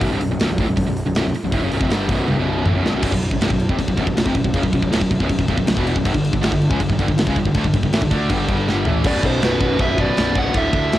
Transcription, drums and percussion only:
0.01 kick, open hi-hat
0.21 open hi-hat
0.40 snare, open hi-hat
0.58 kick, open hi-hat
0.77 kick, open hi-hat
0.97 open hi-hat
1.15 snare, open hi-hat
1.35 open hi-hat
1.52 kick, open hi-hat
1.72 open hi-hat
1.81 kick
1.91 snare, open hi-hat
2.09 kick, open hi-hat
2.28 high tom
2.66 mid tom
2.86 snare
3.03 kick, crash
3.12 kick
3.22 crash
3.31 kick
3.41 snare, crash
3.50 kick
3.60 crash
3.69 kick
3.79 kick, crash
3.88 kick
3.98 kick, crash
4.07 kick
4.17 snare, crash
4.26 kick
4.35 kick, crash
4.44 kick
4.54 kick, crash
4.63 kick
4.73 kick, crash
4.82 kick
4.92 snare, crash
5.01 kick
5.11 kick, crash
5.20 kick
5.29 kick, crash
5.39 kick
5.48 kick, crash
5.58 kick
5.67 snare, crash
5.77 kick
5.87 crash
5.96 kick
6.05 kick, crash
6.14 kick
6.24 crash
6.33 kick
6.43 snare, crash
6.52 kick
6.62 crash
6.71 kick
6.80 kick, crash
6.90 kick
6.99 kick, crash
7.08 kick
7.18 snare, crash
7.27 kick
7.36 kick, crash
7.46 kick
7.54 kick, crash
7.64 kick
7.74 kick, crash
7.83 kick
7.93 snare, crash
8.02 kick
8.11 kick, crash
8.30 kick, crash
8.49 kick, crash
8.69 snare
8.85 floor tom
9.04 kick, crash, china
9.23 kick
9.42 snare, china
9.61 kick
9.79 kick, china
9.98 kick
10.17 snare, china
10.36 kick
10.54 kick, china
10.73 kick
10.92 snare, china

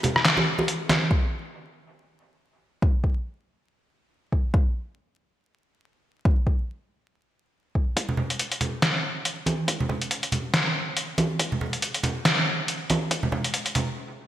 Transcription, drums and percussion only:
0.03 closed hi-hat, high bongo, low conga
0.16 cross-stick
0.25 snare, clap, closed hi-hat
0.37 high bongo, high conga
0.58 high bongo, high conga
0.68 closed hi-hat
0.89 snare, closed hi-hat, high bongo, high conga
1.11 kick
2.82 kick
3.04 kick
4.32 kick
4.54 kick
6.25 kick
6.47 kick
7.75 kick
7.97 kick, closed hi-hat
8.09 low conga
8.17 low conga
8.30 closed hi-hat
8.39 closed hi-hat
8.52 closed hi-hat
8.61 closed hi-hat, low conga
8.82 snare, closed hi-hat
9.25 closed hi-hat
9.46 closed hi-hat, high conga
9.68 kick, closed hi-hat
9.80 low conga
9.89 kick, low conga
10.02 closed hi-hat
10.11 closed hi-hat
10.23 closed hi-hat
10.32 closed hi-hat, low conga
10.54 snare, closed hi-hat
10.97 closed hi-hat
11.18 kick, closed hi-hat, high conga
11.39 kick, closed hi-hat
11.52 low conga
11.61 low conga
11.73 closed hi-hat
11.82 closed hi-hat
11.94 closed hi-hat
12.03 closed hi-hat, low conga
12.25 snare, closed hi-hat
12.68 closed hi-hat
12.90 closed hi-hat, high conga
13.11 kick, closed hi-hat
13.23 low conga
13.32 kick, low conga
13.44 closed hi-hat
13.54 closed hi-hat
13.66 closed hi-hat
13.75 closed hi-hat, low conga

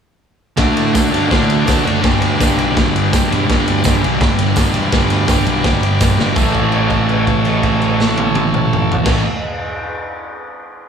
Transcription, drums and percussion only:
0.57 kick, snare, ride
0.77 ride
0.95 kick, snare, ride, tambourine
1.14 ride
1.31 kick, snare, ride
1.50 ride
1.67 kick, snare, ride, tambourine
1.87 ride
2.04 kick, snare, ride
2.22 ride
2.40 kick, snare, ride, tambourine
2.58 ride
2.77 kick, snare, ride
2.96 ride
3.13 kick, snare, ride, tambourine
3.32 ride
3.50 kick, snare, ride
3.68 ride
3.84 kick, snare, ride, tambourine
4.04 ride
4.21 kick, snare, ride
4.39 ride
4.56 kick, snare, ride, tambourine
4.74 ride
4.92 kick, snare, ride
5.10 ride
5.28 kick, snare, ride, tambourine
5.46 ride
5.64 kick, snare, ride
5.83 ride
6.01 kick, snare, ride, tambourine
6.19 snare
6.36 kick, crash, tambourine
6.55 kick, crash
6.72 crash
6.90 kick, crash
7.09 crash
7.27 kick, crash
7.45 crash
7.63 kick, crash
7.82 crash
8.00 snare
8.18 high tom
8.35 high tom
8.54 mid tom
8.73 mid tom
8.92 floor tom
9.05 kick, snare, crash

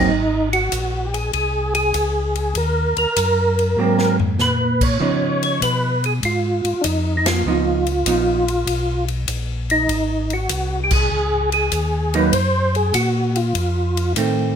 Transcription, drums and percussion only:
0.53 ride
0.72 kick, hi-hat pedal, ride
1.14 ride
1.33 kick, ride
1.75 ride
1.94 kick, hi-hat pedal, ride
2.36 ride
2.55 kick, ride
2.97 ride
3.16 kick, hi-hat pedal, ride
3.59 ride
3.99 snare
4.20 floor tom
4.39 snare, hi-hat pedal
4.81 kick, crash
5.00 kick
5.43 ride
5.62 kick, hi-hat pedal, ride
6.04 ride
6.23 kick, ride
6.65 ride
6.84 kick, hi-hat pedal, ride
7.26 snare, ride
7.87 ride
8.06 kick, hi-hat pedal, ride
8.48 ride
8.67 kick, ride
9.08 ride
9.28 kick, hi-hat pedal, ride
9.70 ride
9.89 kick, ride
10.30 ride
10.49 kick, hi-hat pedal, ride
10.91 kick, crash
11.52 ride
11.72 kick, hi-hat pedal, ride
12.14 ride
12.33 kick, ride
12.75 ride
12.94 kick, hi-hat pedal, ride
13.36 ride
13.55 kick, ride
13.97 ride
14.16 kick, hi-hat pedal, ride

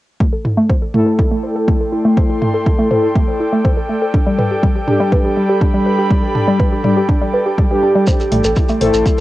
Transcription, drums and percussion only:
0.20 kick
0.45 mid tom
0.70 kick
0.94 mid tom
1.19 kick
1.68 kick
2.17 kick
2.42 mid tom
2.66 kick
2.91 mid tom
3.16 kick
3.65 kick
4.14 kick
4.39 mid tom
4.63 kick
4.88 mid tom
5.12 kick
5.61 kick
6.11 kick
6.35 mid tom
6.60 kick
6.84 mid tom
7.09 kick
7.58 kick
8.07 kick, closed hi-hat, shekere
8.20 closed hi-hat, shekere
8.32 closed hi-hat, mid tom
8.44 closed hi-hat, shekere
8.56 kick, closed hi-hat, shekere
8.69 closed hi-hat, shekere
8.81 closed hi-hat, mid tom
8.94 closed hi-hat, shekere
9.06 kick, closed hi-hat, shekere

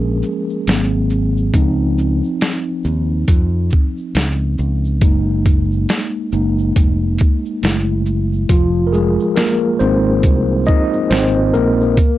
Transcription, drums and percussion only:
0.23 shaker
0.50 shaker
0.67 snare, closed hi-hat, shaker
1.10 shaker
1.37 shaker
1.54 kick, closed hi-hat, shaker
1.97 shaker
2.24 shaker
2.41 snare, closed hi-hat, shaker
2.84 shaker
3.27 kick, closed hi-hat, shaker
3.70 shaker
3.72 kick, shaker
3.97 shaker
4.15 snare, closed hi-hat, shaker
4.58 shaker
4.85 shaker
5.01 kick, closed hi-hat, shaker
5.45 kick, closed hi-hat, shaker
5.72 shaker
5.89 snare, closed hi-hat, shaker
6.32 shaker
6.58 shaker
6.76 kick, closed hi-hat, shaker
7.18 closed hi-hat, shaker
7.20 kick, shaker
7.45 shaker
7.63 snare, closed hi-hat, shaker
8.06 shaker
8.32 shaker
8.49 kick, closed hi-hat, shaker
8.93 shaker
9.20 shaker
9.36 snare, closed hi-hat, shaker
9.80 shaker
10.23 kick, closed hi-hat, shaker
10.66 shaker
10.68 kick, shaker
10.93 shaker
11.11 snare, closed hi-hat, shaker
11.54 shaker
11.81 shaker
11.97 kick, closed hi-hat, shaker

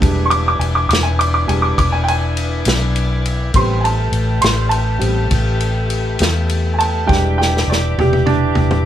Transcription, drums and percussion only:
0.02 kick, ride
0.31 ride
0.61 ride
0.90 snare, ride
1.21 ride
1.49 ride
1.78 kick, ride
2.08 ride
2.37 ride
2.65 snare, ride
2.96 ride
3.26 ride
3.54 kick, ride
3.85 ride
4.13 ride
4.42 snare, ride
4.71 ride
5.01 ride
5.31 kick, ride
5.60 ride
5.90 ride
6.19 snare, ride
6.49 ride
6.80 ride
7.09 kick, snare
7.42 snare
7.57 snare
7.72 snare
7.99 high tom
8.13 high tom
8.27 high tom
8.55 high tom
8.71 mid tom

